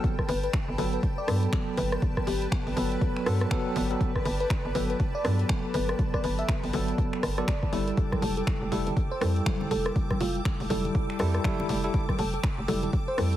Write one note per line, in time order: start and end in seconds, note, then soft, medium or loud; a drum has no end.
0.00 0.14 F#3 medium
0.00 0.14 B3 medium
0.00 0.15 A4 loud
0.00 7.93 A4 medium
0.00 3.97 G5 medium
0.00 13.37 G5 medium
0.00 13.37 A5 medium
0.00 kick loud
0.00 closed hi-hat medium
0.04 7.94 D5 medium
0.04 7.93 B5 medium
0.19 7.97 B4 medium
0.19 kick medium
0.19 cross-stick medium
0.29 0.48 G1 loud
0.29 0.38 B4 medium
0.29 open hi-hat loud
0.44 0.50 B4 medium
0.44 closed hi-hat medium
0.53 finger snap loud
0.53 kick loud
0.53 closed hi-hat medium
0.68 0.76 G1 medium
0.78 0.98 G1 loud
0.78 1.00 F#3 medium
0.78 1.00 B3 medium
0.78 1.00 A4 loud
0.78 0.88 B4 medium
0.78 open hi-hat loud
0.93 1.00 B4 medium
0.93 closed hi-hat medium
1.03 kick loud
1.03 closed hi-hat medium
1.18 1.35 D5 medium
1.28 1.47 G2 loud
1.28 2.74 F#3 medium
1.28 2.74 B3 medium
1.28 2.74 A4 medium
1.28 cross-stick medium
1.28 open hi-hat loud
1.43 closed hi-hat medium
1.53 finger snap loud
1.53 kick loud
1.53 closed hi-hat medium
1.77 1.97 G1 loud
1.77 1.97 B4 medium
1.77 open hi-hat loud
1.92 cross-stick medium
1.92 closed hi-hat medium
2.02 kick loud
2.02 closed hi-hat medium
2.17 kick medium
2.17 cross-stick medium
2.27 2.46 G1 loud
2.27 2.47 G4 medium
2.27 open hi-hat loud
2.42 closed hi-hat medium
2.52 finger snap loud
2.52 kick loud
2.67 2.74 G1 medium
2.67 open hi-hat medium
2.77 2.96 G1 loud
2.77 3.24 F#3 medium
2.77 3.24 B3 medium
2.77 3.24 A4 medium
2.77 3.26 B4 loud
2.77 open hi-hat loud
2.92 closed hi-hat medium
3.01 kick loud
3.01 closed hi-hat medium
3.16 finger snap soft
3.26 3.46 G2 loud
3.26 3.49 F#3 medium
3.26 3.49 B3 medium
3.26 3.49 A4 loud
3.26 cross-stick medium
3.26 open hi-hat loud
3.41 cross-stick medium
3.41 closed hi-hat medium
3.51 3.87 F#3 loud
3.51 3.87 B3 medium
3.51 3.87 A4 loud
3.51 finger snap loud
3.51 kick loud
3.51 closed hi-hat medium
3.76 3.95 G1 loud
3.76 open hi-hat loud
3.91 4.11 F#3 medium
3.91 4.11 B3 medium
3.91 4.11 A4 loud
3.91 closed hi-hat medium
4.01 7.93 A5 medium
4.01 kick loud
4.01 closed hi-hat medium
4.16 kick medium
4.16 cross-stick medium
4.25 4.45 G1 loud
4.25 4.35 B4 medium
4.25 open hi-hat loud
4.40 4.47 B4 medium
4.40 closed hi-hat medium
4.50 finger snap loud
4.50 kick loud
4.50 closed hi-hat medium
4.65 4.72 G1 medium
4.75 4.94 G1 loud
4.75 4.97 F#3 medium
4.75 4.97 B3 medium
4.75 4.97 A4 loud
4.75 4.85 B4 medium
4.75 open hi-hat loud
4.90 4.96 B4 medium
4.90 closed hi-hat medium
5.00 kick loud
5.00 closed hi-hat medium
5.15 5.31 D5 medium
5.24 5.44 G2 loud
5.24 6.71 F#3 medium
5.24 6.71 B3 medium
5.24 6.71 A4 medium
5.24 cross-stick medium
5.24 open hi-hat loud
5.39 closed hi-hat medium
5.49 finger snap loud
5.49 kick loud
5.74 5.94 G1 loud
5.74 5.94 B4 medium
5.74 open hi-hat loud
5.89 cross-stick medium
5.89 closed hi-hat medium
5.99 kick loud
5.99 closed hi-hat medium
6.14 6.22 D5 medium
6.14 kick medium
6.14 cross-stick medium
6.24 6.43 G1 loud
6.24 6.36 B4 medium
6.24 open hi-hat loud
6.39 6.55 E5 medium
6.39 closed hi-hat medium
6.49 finger snap loud
6.49 kick loud
6.64 6.71 G1 medium
6.64 open hi-hat medium
6.73 6.93 G1 loud
6.73 7.21 F#3 medium
6.73 7.21 B3 medium
6.73 7.21 A4 medium
6.73 open hi-hat loud
6.88 closed hi-hat medium
6.98 kick loud
6.98 closed hi-hat medium
7.13 finger snap soft
7.23 7.42 G1 medium
7.23 cross-stick medium
7.23 open hi-hat loud
7.38 7.49 F#3 medium
7.38 7.49 B3 medium
7.38 7.49 A4 loud
7.38 7.88 D5 medium
7.38 cross-stick medium
7.38 closed hi-hat medium
7.48 finger snap loud
7.48 kick loud
7.48 closed hi-hat medium
7.63 kick medium
7.72 7.92 G1 medium
7.72 8.69 G3 medium
7.72 8.69 E4 medium
7.72 8.70 A4 medium
7.72 open hi-hat loud
7.88 closed hi-hat medium
7.97 13.37 A4 medium
7.97 13.37 G5 medium
7.97 13.37 D6 medium
7.97 13.37 E6 medium
7.97 kick loud
7.97 closed hi-hat medium
8.12 kick medium
8.12 cross-stick medium
8.12 high conga loud
8.22 8.42 F1 loud
8.22 8.32 A4 medium
8.22 open hi-hat loud
8.37 8.43 A4 medium
8.37 closed hi-hat medium
8.47 finger snap loud
8.47 kick loud
8.47 closed hi-hat medium
8.62 8.69 F1 medium
8.72 8.91 F1 loud
8.72 8.94 G3 medium
8.72 8.94 E4 medium
8.72 8.81 A4 medium
8.72 8.94 A4 loud
8.72 open hi-hat loud
8.87 8.93 A4 medium
8.87 closed hi-hat medium
8.87 low conga medium
8.97 kick loud
8.97 closed hi-hat medium
9.11 9.28 C5 medium
9.21 9.41 F2 loud
9.21 10.68 G3 medium
9.21 10.68 E4 medium
9.21 10.68 A4 medium
9.21 cross-stick medium
9.21 open hi-hat loud
9.36 closed hi-hat medium
9.46 finger snap loud
9.46 kick loud
9.46 high conga loud
9.61 low conga loud
9.71 9.90 F1 loud
9.71 9.90 A4 medium
9.71 open hi-hat loud
9.71 muted conga medium
9.86 cross-stick medium
9.86 closed hi-hat medium
9.96 kick loud
9.96 closed hi-hat medium
10.10 kick medium
10.10 cross-stick medium
10.10 high conga medium
10.21 10.40 F1 loud
10.21 10.40 F4 medium
10.21 open hi-hat loud
10.35 closed hi-hat medium
10.45 finger snap loud
10.45 kick loud
10.45 closed hi-hat medium
10.60 10.67 F1 medium
10.60 open hi-hat medium
10.70 10.89 F1 loud
10.70 11.17 G3 medium
10.70 11.17 E4 medium
10.70 11.20 A4 loud
10.70 11.17 A4 medium
10.70 open hi-hat loud
10.70 high conga medium
10.85 closed hi-hat medium
10.85 low conga medium
10.95 kick loud
10.95 closed hi-hat medium
11.10 finger snap soft
11.19 11.39 F2 loud
11.19 11.42 G3 loud
11.19 11.42 E4 medium
11.19 11.42 A4 loud
11.19 cross-stick medium
11.19 open hi-hat loud
11.19 muted conga medium
11.34 cross-stick medium
11.34 closed hi-hat medium
11.44 11.80 G3 medium
11.44 11.81 E4 medium
11.44 11.81 A4 loud
11.44 finger snap loud
11.44 kick loud
11.44 closed hi-hat medium
11.44 high conga loud
11.60 muted conga medium
11.60 low conga medium
11.69 11.89 F1 loud
11.69 open hi-hat loud
11.84 12.05 G3 medium
11.84 12.05 E4 medium
11.84 12.05 A4 loud
11.84 closed hi-hat medium
11.94 kick loud
11.94 closed hi-hat medium
12.09 kick medium
12.09 cross-stick medium
12.09 high conga medium
12.19 12.38 F1 loud
12.19 12.28 A4 medium
12.19 open hi-hat loud
12.34 12.40 A4 medium
12.34 closed hi-hat medium
12.44 finger snap loud
12.44 kick loud
12.58 12.66 F1 medium
12.68 12.88 F1 loud
12.68 12.90 G3 loud
12.68 12.90 E4 medium
12.68 12.78 A4 loud
12.68 12.90 A4 loud
12.68 open hi-hat loud
12.68 high conga medium
12.83 12.90 A4 medium
12.83 closed hi-hat medium
12.83 low conga medium
12.93 kick loud
12.93 closed hi-hat medium
13.08 13.25 C5 medium
13.18 13.37 F2 loud
13.18 13.37 G3 medium
13.18 13.37 E4 medium
13.18 13.37 A4 medium
13.18 cross-stick medium
13.18 open hi-hat loud
13.33 closed hi-hat medium